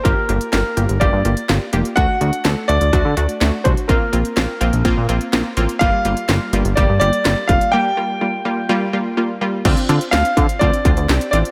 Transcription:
<<
  \new Staff \with { instrumentName = "Grand piano" } { \time 4/4 \key g \minor \tempo 4 = 125 bes'4 bes'4 d''4. r8 | fis''4. d''2 c''8 | bes'2 r2 | f''4. r8 d''8 d''4 f''8 |
g''2. r4 | r4 f''4 d''4. d''8 | }
  \new Staff \with { instrumentName = "Synth pluck" } { \time 4/4 \key g \minor <bes f' g'>8 <bes f' g'>8 <bes f' g'>8 <bes f' g'>8 <bes f' g'>8 <bes f' g'>8 <bes f' g'>8 <bes f' g'>8 | <a d' fis'>8 <a d' fis'>8 <a d' a'>8 <a d' fis'>8 <a d' fis'>8 <a d' fis'>8 <a d' fis'>8 <a d' fis'>8 | <bes c' f'>8 <bes c' f'>8 <bes c' f'>8 <bes c' f'>8 <bes c' f'>8 <bes c' f'>8 <bes c' f'>8 <bes c' f'>8 | <g bes f'>8 <g bes f'>8 <g bes f'>8 <g bes f'>8 <g bes g'>8 <g bes g'>8 <g bes f'>8 <g bes f'>8 |
<g bes g'>8 <g bes f'>8 <g bes f'>8 <g bes f'>8 <g bes f'>8 <g bes f'>8 <g bes f'>8 <g bes f'>8 | <c' d' f'>8 <c' d' f'>8 <c' d' f'>8 <c' d' f'>8 <c' d' f'>8 <c' d' f'>8 <c' d' g'>8 <c' d' f'>8 | }
  \new Staff \with { instrumentName = "Analog synth bass" } { \clef bass \time 4/4 \key g \minor g,,16 r16 g,,16 r16 g,,16 r16 g,,16 g,,16 g,,16 g,16 g,,16 r16 g,,16 r16 f,,16 r16 | d,16 r16 d,16 r16 d,16 r16 d,16 d,16 d,16 d16 d,16 r16 d,16 r16 c,16 r16 | bes,,16 r16 bes,,16 r16 bes,,16 r16 bes,,16 bes,,16 bes,,16 bes,16 bes,,16 r16 bes,,16 r16 a,,16 r16 | g,,16 r16 g,,16 r16 g,,16 r16 g,,16 g,,16 g,,16 g,16 g,,16 r16 g,,16 r16 f,,16 r16 |
r1 | d,16 r16 d16 r16 d,16 r16 d16 r16 d,16 r16 d,16 d,16 c,16 r16 a,,16 r16 | }
  \new DrumStaff \with { instrumentName = "Drums" } \drummode { \time 4/4 <hh bd>8 hh16 hh16 <hh sn>8 hh16 hh16 <hh bd>8 hh16 hh16 <hh sn>8 hh16 hh16 | <hh bd>8 hh16 hh16 <hh sn>8 hh16 hh16 <hh bd>8 hh16 hh16 <hh sn>8 <hh bd>16 hh16 | <hh bd>8 hh16 hh16 <hh sn>8 hh16 hh16 <hh bd>8 hh16 hh16 <hh sn>8 hh16 hh16 | <hh bd>8 hh16 hh16 <hh sn>8 hh16 hh16 <hh bd>8 hh16 hh16 <hh sn>8 <hh bd>16 hh16 |
r4 r4 r4 r4 | <cymc hh bd>16 hh16 hh16 hh16 <hh sn>16 hh16 <hh bd>16 hh16 <hh bd>16 hh16 <hh bd>16 hh16 <hh sn>16 hh16 hh16 hh16 | }
>>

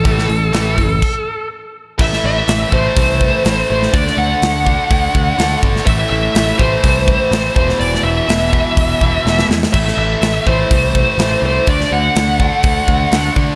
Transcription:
<<
  \new Staff \with { instrumentName = "Lead electric guitar" } { \time 4/4 \key c \major \tempo 4 = 124 a'2. r4 | \key a \dorian e''8 e''4 c''2 c''8 | d''8 fis''2. r8 | e''8 e''4 c''2 c''8 |
d''8 e''2. r8 | e''8 e''4 c''2 c''8 | d''8 fis''2. r8 | }
  \new Staff \with { instrumentName = "Distorted electric guitar" } { \clef bass \time 4/4 \key c \major <a, e a>8 <a, e>8 <a, e a>8 <a, e>8 r2 | \key a \dorian <a, e a>4. <a, e a>4. <a, e a>4 | <d a d'>4. <d a d'>4. <d a d'>4 | <a, e a>4. <a, e a>4. <a, e a>8 <e, b, e>8~ |
<e, b, e>4 <e, b, e>4. <e, b, e>4 r8 | <a, e a>4. <a, e a>4. <a, e a>4 | <d a d'>4. <d a d'>4. <d a d'>4 | }
  \new Staff \with { instrumentName = "Picked electric bass" } { \clef bass \time 4/4 \key c \major a,,8 a,,8 a,,8 fis,,8 r2 | \key a \dorian a,,8 a,,8 a,,8 a,,8 c,4 a,,8 a,,8 | d,8 d,8 d,4 d,8 d,8 d,8 g,,8 | a,,8 a,,8 a,,8 a,,8 c,4 a,,8 e,,8 |
e,,8 e,,8 e,,4 e,,8 e,,8 e,,8 e,8 | a,,8 a,,8 a,,8 a,,8 c,4 a,,8 c,8 | d,8 d,8 d,4 d,8 d,8 d,8 d8 | }
  \new DrumStaff \with { instrumentName = "Drums" } \drummode { \time 4/4 <hho bd>16 sn16 hho8 <hho sn>8 <hho bd>8 <cymc bd>4 r4 | <cymc bd>16 sn8. <hho sn>8 bd8 <hho bd>8 bd8 <hho sn>8. sn16 | <hho bd>16 sn8. <hho sn>8 bd8 <hho bd>8 bd8 <hho sn>8 bd16 sn16 | <hho bd>4 <hho sn>8 bd8 <hho bd>8 bd8 <hho sn>8 bd16 sn16 |
hho16 sn8. <hho sn>8 bd8 <hho bd>8 bd8 sn16 sn16 sn16 sn16 | <cymc bd>16 sn8. <hho sn>8 bd8 <hho bd>8 bd8 <hho sn>4 | <hho bd>16 sn8. <hho sn>8 bd8 <hho bd>8 bd8 <hho sn>8 bd8 | }
>>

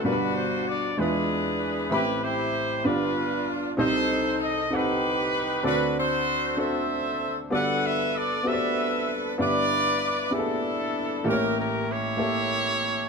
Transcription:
<<
  \new Staff \with { instrumentName = "Horn section" } { \time 6/8 \key g \major \tempo 4. = 64 << { b'8 c''8 d''8 b'4. | b'8 c''4 b'4 r8 | c''4 ees''8 b'4. | b'8 c''4 e''4. |
fis''8 e''8 d''8 e''4 r8 | d''4. a'4. | bes'8 bes'8 cis''2 | } \\ { <d' fis'>4. <d' gis'>4. | <e' g'>8 <e' g'>4 <d' f'>4. | <ees' a'>4. <ees' g'>4. | fis'8 <fis' a'>4 <a' c''>4. |
<a' b'>4. <a' b'>4. | b'4. <d' e'>4. | <cis' g'>4 <e' g'>2 | } >> }
  \new Staff \with { instrumentName = "Upright piano" } { \time 6/8 \key g \major << { a'16 r2 r8. | r2. | r2. | r2. |
r2. | r2. | r2. | } \\ { <b, g d' fis' bes' b''>4 r8 <gis d' e' f' b'>4 r8 | <a c' e' g' b''>4 r8 <b d' f' g' d''>4 r8 | <c' ees' g' a' ees''>4 r8 <c' ees' g' a' fis''>4 r8 | <c' d' fis' a' d''>4 r8 <c' d' fis' a' c''>4 r8 |
<b fis' g' a' d''>4 r8 <b fis' g' a' c'' d''>4 r8 | <b d' e' g' d''>4 r8 <b d' e' g' aes' a'>4 r8 | <a bes e' g' bes' cis''>4 r8 <bes e' g' a' cis''>4 r8 | } >> }
  \new Staff \with { instrumentName = "Upright piano" } { \clef bass \time 6/8 \key g \major <g,, g,>4. <e, e>4. | <a,, a,>4. <g,, g,>4. | <c, c>2. | <d, d>2. |
<g,, g,>2. | <g,, g,>2. | <a,, a,>2. | }
>>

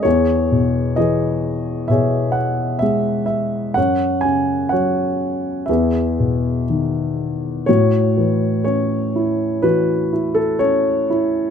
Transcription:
<<
  \new Staff \with { instrumentName = "Grand piano" } { \time 4/4 \key a \lydian \tempo 4 = 62 << { cis''4 dis''4 e''8 fis''8 e''8 e''8 | fis''8 gis''8 fis''4 e''4 r4 | cis''4 cis''4 b'8. a'16 cis''4 | } \\ { gis'4 <gis' b'>4 <gis' cis''>2 | cis''4 cis''4 <gis' b'>2 | fis'2 fis'2 | } >> }
  \new Staff \with { instrumentName = "Grand piano" } { \clef bass \time 4/4 \key a \lydian e,8 b,8 e4 b,4 gis4 | fis,8 cis8 fis4 e,8 b,8 dis4 | a,8 e8 cis'8 e'8 e8 e'8 cis'8 e'8 | }
>>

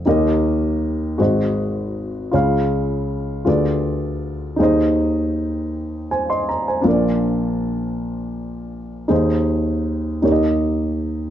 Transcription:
\new Staff \with { instrumentName = "Grand piano" } { \time 6/8 \key aes \major \tempo 4. = 53 << { r2. | r2. | r2 <c'' aes''>16 <ees'' c'''>16 bes''16 <c'' aes''>16~ | <c'' aes''>16 r2 r8. |
r2. | } \\ { <ees, ees ees' g' bes' ees''>4. <aes,, aes, ges' aes' c'' ees''>4. | <des, des f' aes' des'' f''>4. <d, d f' aes' b' d''>4. | <ees, ees ees' aes' c'' ees''>2. | <bes,, bes, d' f' bes' d''>2. |
<ees, ees ees' aes' c'' ees''>4. <ees, ees ees' g' bes' des'' ees''>4. | } >> }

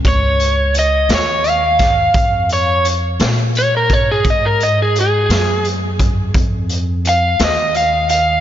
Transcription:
<<
  \new Staff \with { instrumentName = "Overdriven electric guitar" } { \time 12/8 \key des \major \tempo 4. = 57 des''4 ees''8 des''8 f''4. des''8 r4 des''16 bes'16 des''16 aes'16 | ees''16 bes'16 ees''16 aes'16 aes'4 r2 f''8 ees''8 f''8 f''8 | }
  \new Staff \with { instrumentName = "Upright bass" } { \clef bass \time 12/8 \key des \major des,4. ees,4. f,4. bes,4. | aes,4. ges,4. f,4. ees,4. | }
  \new DrumStaff \with { instrumentName = "Drums" } \drummode { \time 12/8 <hh bd>8 hh8 hh8 <hh sn>8 hh8 <hh bd sn>8 <hh bd>8 hh8 hh8 <hh sn>8 hh8 <hh bd>8 | <hh bd>8 hh8 hh8 <hh sn>8 hh8 <hh bd>8 <hh bd>8 hh8 hh8 <hh sn>8 hh8 hh8 | }
>>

